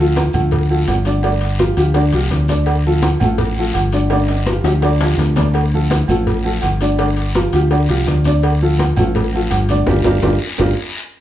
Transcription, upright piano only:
0.00 0.29 F3 medium
0.00 0.29 F4 medium
0.00 0.29 A4 medium
0.35 0.64 F3 medium
0.35 0.64 F4 medium
0.35 0.64 A4 medium
0.70 0.99 F3 medium
0.70 0.99 F4 medium
0.70 1.00 A4 medium
1.06 1.21 D3 medium
1.06 1.21 D4 medium
1.06 1.21 D5 medium
1.24 1.53 D3 medium
1.24 1.53 D4 medium
1.24 1.53 D5 medium
1.59 1.74 F3 medium
1.59 1.74 F4 medium
1.59 1.74 G4 medium
1.78 1.92 F3 medium
1.78 1.92 F4 medium
1.78 1.93 G4 medium
1.96 2.10 D3 medium
1.96 2.10 D4 medium
1.96 2.10 D5 medium
2.13 2.43 F3 medium
2.13 2.43 F4 medium
2.13 2.43 G4 medium
2.49 2.79 D3 medium
2.49 2.79 D4 medium
2.49 2.79 D5 medium
2.86 3.15 F3 medium
2.86 3.15 F4 medium
2.86 3.16 A4 medium
3.22 3.51 F3 medium
3.22 3.51 F4 medium
3.22 3.52 A4 medium
3.59 3.87 F3 medium
3.59 3.88 F4 medium
3.59 3.88 A4 medium
3.93 4.08 D3 medium
3.93 4.08 D4 medium
3.93 4.09 D5 medium
4.12 4.41 D3 medium
4.12 4.41 D4 medium
4.12 4.41 D5 medium
4.48 4.63 F3 medium
4.48 4.63 F4 medium
4.48 4.63 G4 medium
4.67 4.81 F3 medium
4.67 4.81 F4 medium
4.67 4.81 G4 medium
4.84 4.98 D3 medium
4.84 4.99 D4 medium
4.84 4.98 D5 medium
5.03 5.32 F3 medium
5.03 5.32 F4 medium
5.03 5.32 G4 medium
5.37 5.67 D3 medium
5.37 5.67 D4 medium
5.37 5.67 D5 medium
5.74 6.03 F3 medium
5.74 6.03 F4 medium
5.74 6.03 A4 medium
6.09 6.39 F3 medium
6.09 6.39 F4 medium
6.09 6.39 A4 medium
6.45 6.74 F3 medium
6.45 6.75 F4 medium
6.45 6.75 A4 medium
6.81 6.96 D3 medium
6.81 6.96 D4 medium
6.81 6.96 D5 medium
7.00 7.29 D3 medium
7.00 7.29 D4 medium
7.00 7.29 D5 medium
7.35 7.50 F3 medium
7.35 7.50 F4 medium
7.35 7.50 G4 medium
7.54 7.68 F3 medium
7.54 7.68 F4 medium
7.54 7.69 G4 medium
7.72 7.86 D3 medium
7.72 7.86 D4 medium
7.72 7.87 D5 medium
7.90 8.19 F3 medium
7.90 8.19 F4 medium
7.90 8.19 G4 medium
8.26 8.55 D3 medium
8.26 8.56 D4 medium
8.26 8.56 D5 medium
8.62 8.92 F3 medium
8.62 8.91 F4 medium
8.62 8.92 A4 medium
8.98 9.28 F3 medium
8.98 9.28 F4 medium
8.98 9.28 A4 medium
9.35 9.64 F3 medium
9.35 9.64 F4 medium
9.35 9.64 A4 medium
9.71 9.85 D3 medium
9.71 9.85 D4 medium
9.71 9.85 D5 medium
9.88 10.00 D4 loud
9.88 10.00 F4 medium
9.88 10.00 G4 medium
10.06 10.17 D4 loud
10.06 10.17 F4 loud
10.06 10.17 G4 loud
10.24 10.35 D4 loud
10.24 10.35 F4 loud
10.24 10.35 G4 medium
10.60 10.71 D4 medium
10.60 10.71 F4 loud
10.60 10.71 G4 medium

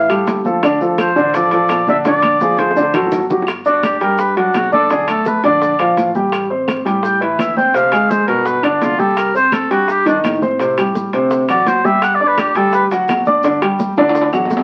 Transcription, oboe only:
0.00 0.42 F5 medium
1.00 1.37 C5 medium
1.35 1.88 D5 loud
1.89 1.97 E5 loud
2.07 2.61 D5 loud
2.59 3.12 C5 medium
3.66 3.86 F#4 medium
3.84 4.01 G4 medium
4.03 4.22 A#4 medium
4.20 4.37 B4 medium
4.38 4.58 D4 medium
4.57 4.73 F#4 medium
4.73 4.93 A4 loud
4.92 5.09 G#4 medium
5.10 5.29 A4 medium
5.28 5.44 B4 medium
5.45 5.94 D5 loud
7.05 7.21 G5 medium
7.22 7.42 B4 medium
7.40 7.57 E5 medium
7.57 7.77 G5 loud
7.75 8.12 F5 loud
8.11 8.27 C5 medium
8.27 8.47 A#4 loud
8.46 8.65 B4 medium
8.64 8.85 D4 medium
8.84 9.01 F4 medium
9.00 9.20 A4 medium
9.18 9.35 A#4 medium
9.36 9.55 C5 loud
9.54 9.71 A4 medium
9.72 9.92 F#4 loud
9.91 10.07 G4 loud
10.08 10.18 D4 medium
11.50 11.69 D5 loud
11.68 11.87 C5 loud
11.86 12.05 E5 loud
12.03 12.16 F#5 loud
12.15 12.29 D5 medium
12.28 12.41 B4 medium
12.40 12.58 G4 medium
12.57 12.74 A4 medium
12.74 12.85 B4 medium

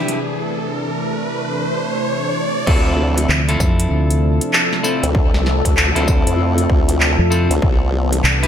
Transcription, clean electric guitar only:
0.00 0.18 D4 medium
0.00 0.18 E4 medium
0.00 0.18 G4 medium
0.00 0.17 B4 medium
2.67 3.41 C4 loud
2.67 3.41 E4 medium
2.67 3.41 F4 loud
2.67 3.41 A4 loud
3.48 4.81 C4 medium
3.48 4.81 E4 medium
3.48 4.81 F4 medium
3.48 4.81 A4 medium
4.83 5.05 C4 medium
4.83 5.05 E4 medium
4.83 5.05 F4 medium
4.83 5.05 A4 medium
5.95 7.28 C4 medium
5.95 7.28 E4 medium
5.95 7.28 F4 medium
5.95 7.28 A4 medium
7.30 7.52 C4 medium
7.30 7.52 E4 medium
7.30 7.52 F4 medium
7.30 7.52 A4 medium
8.43 8.47 D4 medium
8.43 8.47 E4 medium
8.43 8.47 G4 medium
8.43 8.47 B4 medium

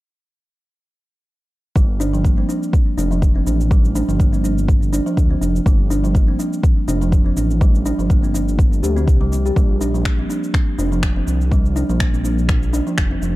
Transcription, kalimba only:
1.76 1.88 G3 medium
2.00 2.12 D4 loud
2.13 2.23 F3 loud
2.24 2.37 A#3 medium
2.38 2.44 C4 medium
2.49 2.61 D4 medium
2.98 3.10 D4 medium
3.11 3.21 F3 loud
3.36 3.41 C4 medium
3.47 3.59 D4 medium
3.71 3.83 G3 loud
3.95 4.07 D4 medium
4.09 4.19 F3 medium
4.20 4.32 A#3 medium
4.33 4.39 C4 medium
4.44 4.56 D4 medium
4.93 5.05 D4 medium
5.06 5.16 F3 medium
5.31 5.37 C4 medium
5.41 5.54 D4 medium
5.66 5.78 G3 loud
5.90 6.03 D4 loud
6.04 6.14 F3 medium
6.15 6.28 A#3 medium
6.28 6.34 C4 medium
6.39 6.51 D4 medium
6.88 7.00 D4 loud
7.01 7.11 F3 loud
7.26 7.32 C4 medium
7.37 7.49 D4 medium
7.61 7.73 G3 loud
7.86 7.98 D4 medium
7.99 8.09 F3 medium
8.10 8.23 A#3 medium
8.23 8.29 C4 medium
8.34 8.46 D4 medium
8.83 8.95 G4 medium
8.97 9.07 C4 loud
9.21 9.31 G3 loud
9.32 9.39 G3 medium
9.46 9.51 G4 medium
9.56 9.68 G3 loud
9.81 9.93 D4 medium
9.94 10.04 F3 medium
10.19 10.25 C4 medium
10.30 10.42 D4 medium
10.79 10.91 D4 medium
10.92 11.02 F3 medium
11.16 11.22 C4 medium
11.27 11.40 F3 medium
11.52 11.64 G3 loud
11.76 11.88 D4 loud
11.90 11.99 F3 loud
12.00 12.13 A#3 medium
12.14 12.20 C4 medium
12.25 12.37 D4 medium
12.73 12.85 D4 medium
12.87 12.97 F3 loud
13.11 13.17 C4 medium
13.22 13.35 F3 medium

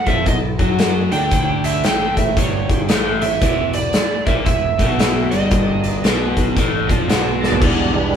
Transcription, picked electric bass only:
0.07 0.26 F2 medium
0.27 0.57 B1 medium
0.59 1.08 F#2 medium
1.13 1.81 D2 medium
1.85 2.34 A1 medium
2.37 2.86 G1 medium
2.90 3.21 A1 medium
3.24 3.41 A1 medium
3.42 3.73 E1 medium
3.76 3.94 E1 medium
4.27 4.46 A#1 medium
4.46 4.77 E1 medium
4.80 5.28 B1 medium
5.33 6.01 G1 medium
6.05 6.53 B1 medium
6.57 6.87 A1 medium
6.89 7.08 F2 medium
7.10 7.58 B1 medium
7.62 7.92 E1 medium
7.95 8.13 E1 medium

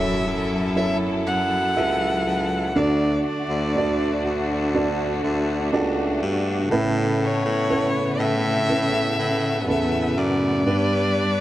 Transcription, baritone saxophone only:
0.00 0.23 F#2 medium
0.27 1.22 F#2 medium
1.27 1.73 F#2 medium
1.76 2.23 C#2 medium
2.26 2.72 C#2 medium
2.75 3.19 D2 medium
3.49 4.20 D2 medium
4.25 5.20 D2 medium
5.23 5.69 D2 medium
5.73 6.19 C#2 medium
6.22 6.68 G2 loud
6.71 7.41 A2 loud
7.45 7.89 A2 medium
8.19 9.14 A2 loud
9.19 9.69 A2 medium
9.68 10.13 E2 medium
10.17 10.63 F#2 medium
10.66 11.36 G2 medium

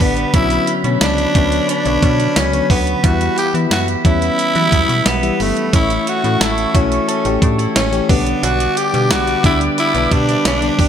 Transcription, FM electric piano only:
0.00 0.34 D3 medium
0.00 0.36 G3 medium
0.00 0.34 B3 medium
0.00 0.36 D4 medium
0.34 0.76 D3 medium
0.34 0.77 F#3 medium
0.34 0.77 B3 medium
0.34 0.77 C#4 medium
0.84 1.27 D3 medium
0.84 1.27 F#3 medium
0.84 1.27 B3 medium
0.84 1.28 C#4 medium
1.35 1.78 D3 medium
1.35 1.78 F#3 medium
1.35 1.78 B3 medium
1.35 1.78 C#5 medium
1.85 2.42 D3 medium
1.85 2.42 F#3 medium
1.85 2.42 B3 medium
1.85 2.43 C#5 medium
2.53 2.95 D3 medium
2.53 2.96 F#3 medium
2.53 2.96 B3 medium
2.53 2.96 C#5 medium
3.03 3.46 E3 medium
3.03 3.46 G3 medium
3.03 3.46 B3 medium
3.03 3.47 E4 medium
3.54 3.97 E3 medium
3.54 3.97 G3 medium
3.54 3.97 B3 medium
3.54 3.97 E4 medium
4.04 4.47 E3 medium
4.04 4.47 G3 medium
4.04 4.47 B3 medium
4.04 4.48 C#4 medium
4.55 5.12 E3 medium
4.55 4.62 F#3 medium
4.55 5.12 B3 medium
4.55 5.12 E4 medium
4.62 5.15 G3 medium
5.23 5.65 E3 medium
5.23 5.65 G3 medium
5.23 5.66 B3 medium
5.23 5.66 E4 medium
5.73 6.16 E3 medium
5.73 6.16 A3 medium
5.73 6.16 C#4 medium
5.73 6.16 E4 medium
6.23 6.66 E3 medium
6.23 6.66 A3 medium
6.23 6.67 C#4 medium
6.23 6.67 E4 medium
6.74 7.17 E3 medium
6.74 7.17 A3 medium
6.74 7.17 C#4 medium
6.74 7.17 F#4 medium
7.25 7.82 E3 medium
7.25 7.82 A3 medium
7.25 7.82 C#4 medium
7.25 7.82 G4 medium
7.92 8.09 E3 medium
7.92 8.09 A3 medium
7.92 8.09 C#4 medium
7.92 8.10 G4 medium
8.09 8.80 D3 medium
8.09 8.80 G3 medium
8.09 8.80 B3 medium
8.09 8.81 D4 medium
8.93 9.36 D3 medium
8.93 9.36 G3 medium
8.93 9.36 B3 medium
8.93 9.36 D4 medium
9.44 9.86 D3 medium
9.44 9.87 G3 medium
9.44 9.87 B3 medium
9.44 9.87 D4 medium
9.94 10.51 D3 medium
9.94 10.51 G3 medium
9.94 10.51 B3 medium
9.94 10.52 D4 medium
10.61 10.88 D3 medium
10.61 10.88 G3 medium
10.61 10.88 B3 medium
10.61 10.88 D4 medium

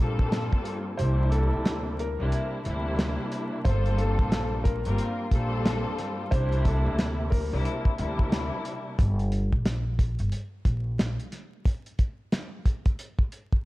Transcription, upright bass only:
0.00 0.48 A#1 medium
0.99 1.49 C2 loud
1.53 2.15 D2 medium
2.20 2.31 C2 medium
2.66 3.15 D2 medium
3.66 4.15 G1 loud
4.19 4.82 A#1 medium
4.86 4.98 G1 medium
5.32 5.82 A#1 medium
6.32 6.82 C2 loud
6.86 7.49 D2 medium
7.53 7.64 C2 medium
7.99 8.49 D2 medium
8.99 9.49 G1 loud
10.20 10.31 G1 medium
10.66 11.15 A#1 medium

